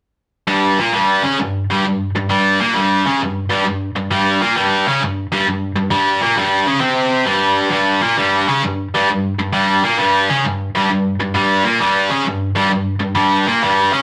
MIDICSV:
0, 0, Header, 1, 2, 480
1, 0, Start_track
1, 0, Tempo, 452830
1, 517, Time_signature, 4, 2, 24, 8
1, 14861, End_track
2, 0, Start_track
2, 0, Title_t, "Distorted electric guitar"
2, 0, Program_c, 0, 30
2, 503, Note_on_c, 0, 43, 84
2, 508, Note_on_c, 0, 55, 101
2, 825, Note_off_c, 0, 43, 0
2, 828, Note_off_c, 0, 55, 0
2, 840, Note_on_c, 0, 46, 90
2, 844, Note_on_c, 0, 58, 90
2, 989, Note_on_c, 0, 55, 100
2, 990, Note_on_c, 0, 43, 86
2, 992, Note_off_c, 0, 46, 0
2, 994, Note_off_c, 0, 58, 0
2, 1309, Note_off_c, 0, 43, 0
2, 1309, Note_off_c, 0, 55, 0
2, 1311, Note_on_c, 0, 49, 90
2, 1311, Note_on_c, 0, 61, 104
2, 1467, Note_off_c, 0, 49, 0
2, 1467, Note_off_c, 0, 61, 0
2, 1474, Note_on_c, 0, 43, 68
2, 1736, Note_off_c, 0, 43, 0
2, 1807, Note_on_c, 0, 43, 86
2, 1813, Note_on_c, 0, 55, 102
2, 1955, Note_off_c, 0, 43, 0
2, 1958, Note_off_c, 0, 55, 0
2, 1966, Note_on_c, 0, 43, 75
2, 2222, Note_off_c, 0, 43, 0
2, 2290, Note_on_c, 0, 43, 75
2, 2411, Note_off_c, 0, 43, 0
2, 2437, Note_on_c, 0, 43, 83
2, 2444, Note_on_c, 0, 55, 103
2, 2753, Note_off_c, 0, 43, 0
2, 2756, Note_off_c, 0, 55, 0
2, 2764, Note_on_c, 0, 46, 91
2, 2769, Note_on_c, 0, 58, 98
2, 2910, Note_on_c, 0, 43, 86
2, 2914, Note_off_c, 0, 46, 0
2, 2916, Note_off_c, 0, 58, 0
2, 2916, Note_on_c, 0, 55, 92
2, 3229, Note_off_c, 0, 43, 0
2, 3232, Note_off_c, 0, 55, 0
2, 3239, Note_on_c, 0, 49, 86
2, 3247, Note_on_c, 0, 61, 98
2, 3390, Note_on_c, 0, 43, 64
2, 3391, Note_off_c, 0, 49, 0
2, 3395, Note_off_c, 0, 61, 0
2, 3654, Note_off_c, 0, 43, 0
2, 3716, Note_on_c, 0, 43, 86
2, 3725, Note_on_c, 0, 55, 100
2, 3865, Note_off_c, 0, 43, 0
2, 3874, Note_off_c, 0, 55, 0
2, 3878, Note_on_c, 0, 43, 79
2, 4137, Note_off_c, 0, 43, 0
2, 4198, Note_on_c, 0, 43, 71
2, 4324, Note_off_c, 0, 43, 0
2, 4352, Note_on_c, 0, 43, 90
2, 4359, Note_on_c, 0, 55, 95
2, 4669, Note_off_c, 0, 43, 0
2, 4672, Note_off_c, 0, 55, 0
2, 4674, Note_on_c, 0, 46, 96
2, 4676, Note_on_c, 0, 58, 96
2, 4828, Note_off_c, 0, 46, 0
2, 4829, Note_off_c, 0, 58, 0
2, 4830, Note_on_c, 0, 55, 109
2, 4833, Note_on_c, 0, 43, 98
2, 5148, Note_off_c, 0, 55, 0
2, 5149, Note_off_c, 0, 43, 0
2, 5157, Note_on_c, 0, 49, 97
2, 5168, Note_on_c, 0, 61, 102
2, 5309, Note_off_c, 0, 49, 0
2, 5310, Note_on_c, 0, 43, 69
2, 5314, Note_off_c, 0, 61, 0
2, 5572, Note_off_c, 0, 43, 0
2, 5641, Note_on_c, 0, 43, 88
2, 5643, Note_on_c, 0, 55, 104
2, 5781, Note_off_c, 0, 43, 0
2, 5792, Note_off_c, 0, 55, 0
2, 5794, Note_on_c, 0, 43, 81
2, 6054, Note_off_c, 0, 43, 0
2, 6103, Note_on_c, 0, 43, 77
2, 6235, Note_off_c, 0, 43, 0
2, 6259, Note_on_c, 0, 43, 88
2, 6262, Note_on_c, 0, 55, 107
2, 6581, Note_off_c, 0, 43, 0
2, 6583, Note_off_c, 0, 55, 0
2, 6583, Note_on_c, 0, 46, 91
2, 6595, Note_on_c, 0, 58, 100
2, 6741, Note_off_c, 0, 46, 0
2, 6741, Note_on_c, 0, 43, 87
2, 6747, Note_off_c, 0, 58, 0
2, 6748, Note_on_c, 0, 55, 88
2, 7061, Note_off_c, 0, 43, 0
2, 7065, Note_off_c, 0, 55, 0
2, 7065, Note_on_c, 0, 49, 97
2, 7072, Note_on_c, 0, 61, 104
2, 7211, Note_off_c, 0, 49, 0
2, 7212, Note_off_c, 0, 61, 0
2, 7215, Note_on_c, 0, 48, 94
2, 7216, Note_on_c, 0, 60, 99
2, 7690, Note_on_c, 0, 43, 92
2, 7693, Note_on_c, 0, 55, 110
2, 7698, Note_off_c, 0, 48, 0
2, 7699, Note_off_c, 0, 60, 0
2, 8161, Note_off_c, 0, 43, 0
2, 8169, Note_off_c, 0, 55, 0
2, 8174, Note_on_c, 0, 43, 92
2, 8182, Note_on_c, 0, 55, 90
2, 8496, Note_on_c, 0, 46, 96
2, 8497, Note_off_c, 0, 43, 0
2, 8499, Note_on_c, 0, 58, 102
2, 8501, Note_off_c, 0, 55, 0
2, 8656, Note_off_c, 0, 46, 0
2, 8658, Note_off_c, 0, 58, 0
2, 8661, Note_on_c, 0, 43, 80
2, 8664, Note_on_c, 0, 55, 99
2, 8980, Note_off_c, 0, 43, 0
2, 8982, Note_off_c, 0, 55, 0
2, 8985, Note_on_c, 0, 49, 91
2, 8991, Note_on_c, 0, 61, 102
2, 9140, Note_off_c, 0, 49, 0
2, 9143, Note_off_c, 0, 61, 0
2, 9145, Note_on_c, 0, 43, 67
2, 9407, Note_off_c, 0, 43, 0
2, 9480, Note_on_c, 0, 43, 91
2, 9483, Note_on_c, 0, 55, 106
2, 9625, Note_off_c, 0, 43, 0
2, 9629, Note_off_c, 0, 55, 0
2, 9638, Note_on_c, 0, 43, 83
2, 9893, Note_off_c, 0, 43, 0
2, 9955, Note_on_c, 0, 43, 73
2, 10078, Note_off_c, 0, 43, 0
2, 10100, Note_on_c, 0, 43, 100
2, 10102, Note_on_c, 0, 55, 104
2, 10420, Note_off_c, 0, 43, 0
2, 10420, Note_off_c, 0, 55, 0
2, 10425, Note_on_c, 0, 46, 91
2, 10432, Note_on_c, 0, 58, 104
2, 10580, Note_off_c, 0, 46, 0
2, 10580, Note_on_c, 0, 43, 88
2, 10583, Note_off_c, 0, 58, 0
2, 10583, Note_on_c, 0, 55, 91
2, 10899, Note_off_c, 0, 43, 0
2, 10901, Note_off_c, 0, 55, 0
2, 10908, Note_on_c, 0, 49, 92
2, 10913, Note_on_c, 0, 61, 104
2, 11061, Note_off_c, 0, 49, 0
2, 11064, Note_off_c, 0, 61, 0
2, 11070, Note_on_c, 0, 43, 73
2, 11329, Note_off_c, 0, 43, 0
2, 11399, Note_on_c, 0, 43, 97
2, 11410, Note_on_c, 0, 55, 98
2, 11547, Note_off_c, 0, 43, 0
2, 11552, Note_off_c, 0, 55, 0
2, 11558, Note_on_c, 0, 43, 83
2, 11813, Note_off_c, 0, 43, 0
2, 11876, Note_on_c, 0, 43, 78
2, 11999, Note_off_c, 0, 43, 0
2, 12025, Note_on_c, 0, 43, 89
2, 12037, Note_on_c, 0, 55, 113
2, 12335, Note_on_c, 0, 46, 88
2, 12342, Note_off_c, 0, 43, 0
2, 12344, Note_on_c, 0, 58, 104
2, 12348, Note_off_c, 0, 55, 0
2, 12495, Note_off_c, 0, 46, 0
2, 12500, Note_off_c, 0, 58, 0
2, 12507, Note_on_c, 0, 43, 91
2, 12510, Note_on_c, 0, 55, 104
2, 12823, Note_off_c, 0, 43, 0
2, 12825, Note_off_c, 0, 55, 0
2, 12825, Note_on_c, 0, 49, 91
2, 12834, Note_on_c, 0, 61, 110
2, 12980, Note_off_c, 0, 49, 0
2, 12980, Note_on_c, 0, 43, 71
2, 12984, Note_off_c, 0, 61, 0
2, 13245, Note_off_c, 0, 43, 0
2, 13315, Note_on_c, 0, 43, 91
2, 13322, Note_on_c, 0, 55, 103
2, 13452, Note_off_c, 0, 43, 0
2, 13465, Note_on_c, 0, 43, 79
2, 13469, Note_off_c, 0, 55, 0
2, 13727, Note_off_c, 0, 43, 0
2, 13778, Note_on_c, 0, 43, 72
2, 13911, Note_off_c, 0, 43, 0
2, 13938, Note_on_c, 0, 43, 90
2, 13943, Note_on_c, 0, 55, 105
2, 14260, Note_off_c, 0, 43, 0
2, 14262, Note_off_c, 0, 55, 0
2, 14273, Note_on_c, 0, 46, 82
2, 14283, Note_on_c, 0, 58, 99
2, 14425, Note_off_c, 0, 46, 0
2, 14431, Note_off_c, 0, 58, 0
2, 14436, Note_on_c, 0, 43, 85
2, 14444, Note_on_c, 0, 55, 97
2, 14750, Note_off_c, 0, 43, 0
2, 14751, Note_on_c, 0, 49, 91
2, 14754, Note_off_c, 0, 55, 0
2, 14764, Note_on_c, 0, 61, 109
2, 14861, Note_off_c, 0, 49, 0
2, 14861, Note_off_c, 0, 61, 0
2, 14861, End_track
0, 0, End_of_file